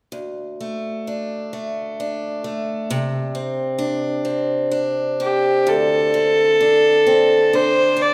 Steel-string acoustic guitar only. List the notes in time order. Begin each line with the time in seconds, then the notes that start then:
0.12 D2
0.60 A3
1.07 D4
1.53 A3
2.00 D4
2.44 A3
2.90 C3
3.35 C4
3.78 D4
4.25 C4
4.71 D4
5.20 C4
5.67 D2
6.14 C4
6.61 D4
7.07 C4
7.53 D4
7.97 C4